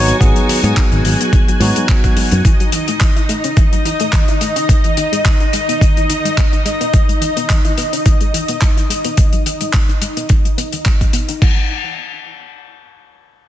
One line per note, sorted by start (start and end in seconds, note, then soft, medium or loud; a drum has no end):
0.00 0.11 G#1 medium
0.00 0.16 F#3 loud
0.00 0.16 B3 medium
0.00 0.16 D#4 medium
0.00 2.46 F#4 medium
0.00 0.16 C#5 loud
0.00 2.46 G#5 medium
0.08 0.12 B3 medium
0.08 closed hi-hat medium
0.20 0.30 G#1 medium
0.20 0.30 D#3 loud
0.20 0.60 F#3 medium
0.20 0.60 B3 medium
0.20 0.60 D#4 medium
0.20 0.60 G#4 medium
0.20 kick loud
0.20 closed hi-hat medium
0.36 0.48 F#3 medium
0.36 closed hi-hat soft
0.49 0.63 D#3 medium
0.49 open hi-hat loud
0.63 0.72 G#2 medium
0.63 1.58 F#3 medium
0.63 0.76 G#3 medium
0.63 1.58 B3 medium
0.63 1.58 D#4 medium
0.63 1.59 G#4 medium
0.63 closed hi-hat medium
0.77 0.86 D#3 medium
0.77 kick loud
0.77 clap loud
0.77 closed hi-hat medium
0.92 1.00 G#1 medium
0.92 0.97 D#4 medium
0.92 closed hi-hat soft
1.04 1.14 G#1 medium
1.04 1.10 G#3 medium
1.04 open hi-hat loud
1.20 1.25 B3 medium
1.20 closed hi-hat medium
1.33 1.42 D#3 loud
1.33 kick loud
1.33 closed hi-hat medium
1.48 1.60 F#3 medium
1.48 closed hi-hat soft
1.60 1.70 G#2 medium
1.60 1.75 D#3 medium
1.60 2.41 F#3 medium
1.60 2.42 B3 medium
1.60 2.42 D#4 medium
1.60 2.42 F#4 medium
1.60 open hi-hat loud
1.76 1.88 G#3 medium
1.76 closed hi-hat medium
1.89 1.98 D#3 medium
1.89 kick loud
1.89 clap loud
1.89 closed hi-hat medium
2.04 2.09 D#4 medium
2.04 kick medium
2.04 closed hi-hat soft
2.16 2.22 G#3 medium
2.16 muted picked electric bass stroke soft
2.16 open hi-hat medium
2.31 2.40 F#2 medium
2.31 2.37 B3 medium
2.31 closed hi-hat medium
2.44 2.54 E3 loud
2.44 11.43 D#4 medium
2.44 11.43 D#5 medium
2.44 kick loud
2.44 closed hi-hat medium
2.60 2.72 F#3 medium
2.60 closed hi-hat soft
2.72 2.82 E3 medium
2.72 closed hi-hat medium
2.88 3.00 A3 medium
2.88 closed hi-hat medium
3.01 3.10 E3 medium
3.01 kick loud
3.01 clap loud
3.01 closed hi-hat medium
3.16 3.21 E4 medium
3.16 closed hi-hat soft
3.29 3.35 A3 medium
3.29 closed hi-hat medium
3.44 3.49 C#4 medium
3.44 closed hi-hat medium
3.57 3.66 E3 medium
3.57 kick loud
3.57 closed hi-hat medium
3.73 3.84 F#3 medium
3.73 closed hi-hat soft
3.85 3.94 E3 medium
3.85 closed hi-hat medium
4.00 4.12 A3 medium
4.00 closed hi-hat medium
4.13 4.22 E3 medium
4.13 kick loud
4.13 clap loud
4.13 closed hi-hat medium
4.28 4.33 E4 medium
4.28 closed hi-hat soft
4.41 4.47 A3 medium
4.41 closed hi-hat medium
4.56 4.61 C#4 medium
4.56 closed hi-hat medium
4.69 4.79 D#3 loud
4.69 kick loud
4.69 closed hi-hat medium
4.84 4.96 E3 medium
4.84 closed hi-hat soft
4.97 5.07 D#3 medium
4.97 closed hi-hat medium
5.12 5.24 G#3 medium
5.12 closed hi-hat medium
5.25 5.35 D#3 medium
5.25 kick loud
5.25 clap loud
5.25 closed hi-hat medium
5.40 5.45 D#4 medium
5.40 closed hi-hat soft
5.53 5.59 G#3 medium
5.53 closed hi-hat loud
5.69 5.73 B3 medium
5.69 closed hi-hat medium
5.81 5.91 D#3 loud
5.81 kick loud
5.81 closed hi-hat medium
5.97 6.08 E3 medium
5.97 closed hi-hat soft
6.10 6.19 D#3 medium
6.10 closed hi-hat medium
6.25 6.36 G#3 medium
6.25 closed hi-hat medium
6.37 6.47 D#3 medium
6.37 kick loud
6.37 clap loud
6.37 closed hi-hat medium
6.53 6.57 D#4 medium
6.53 closed hi-hat soft
6.65 6.71 G#3 medium
6.65 closed hi-hat medium
6.81 6.85 B3 medium
6.81 closed hi-hat medium
6.93 7.03 E3 loud
6.93 kick loud
6.93 closed hi-hat medium
7.09 7.21 G#3 medium
7.09 closed hi-hat soft
7.21 7.31 E3 medium
7.21 closed hi-hat medium
7.37 7.48 B3 medium
7.37 closed hi-hat medium
7.49 7.59 E3 medium
7.49 kick loud
7.49 clap loud
7.49 closed hi-hat medium
7.65 7.70 E4 medium
7.65 closed hi-hat soft
7.78 7.83 B3 medium
7.78 closed hi-hat medium
7.93 7.98 C#4 medium
7.93 closed hi-hat medium
8.05 8.15 E3 medium
8.05 kick loud
8.05 closed hi-hat medium
8.21 8.33 G#3 medium
8.21 closed hi-hat soft
8.34 8.43 E3 medium
8.34 closed hi-hat medium
8.48 8.61 B3 medium
8.48 closed hi-hat medium
8.61 8.71 E3 medium
8.61 kick loud
8.61 clap loud
8.61 closed hi-hat medium
8.77 8.82 E4 medium
8.77 closed hi-hat soft
8.90 8.95 G#3 medium
8.90 closed hi-hat medium
9.05 9.10 B3 medium
9.05 closed hi-hat medium
9.17 9.27 D#3 loud
9.17 kick loud
9.17 closed hi-hat medium
9.33 9.45 F#3 medium
9.33 closed hi-hat soft
9.46 9.55 D#3 medium
9.46 closed hi-hat medium
9.61 9.73 G#3 medium
9.61 closed hi-hat medium
9.73 9.83 D#3 medium
9.73 kick medium
9.73 clap loud
9.73 closed hi-hat medium
9.89 9.94 D#4 medium
9.89 closed hi-hat soft
10.02 10.07 G#3 medium
10.02 closed hi-hat loud
10.17 10.22 B3 medium
10.17 closed hi-hat medium
10.29 10.39 D#3 medium
10.29 kick loud
10.29 closed hi-hat medium
10.45 10.57 F#3 medium
10.45 closed hi-hat soft
10.58 10.63 B3 loud
10.58 closed hi-hat medium
10.72 10.81 D#3 medium
10.72 closed hi-hat medium
10.85 10.95 F#4 medium
10.85 kick loud
10.85 clap medium
10.85 closed hi-hat medium
11.01 11.09 B3 medium
11.01 kick medium
11.01 closed hi-hat soft
11.13 11.23 B3 loud
11.13 closed hi-hat medium
11.29 11.34 D#4 medium
11.29 closed hi-hat medium
11.42 11.68 E3 medium
11.42 kick loud
11.42 crash medium